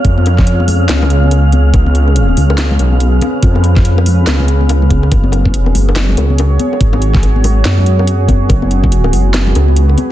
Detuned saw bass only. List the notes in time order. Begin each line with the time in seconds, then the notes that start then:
0.05 F2
0.89 C#2
1.74 C#2
2.37 C#2
2.79 B1
3.43 F2
4.27 C#2
4.91 C#2
5.12 F#1
5.56 F1
5.75 F#1
6.17 C#2
6.81 G#1
7.65 F#2
8.50 F#1
9.13 F#1
9.55 C#2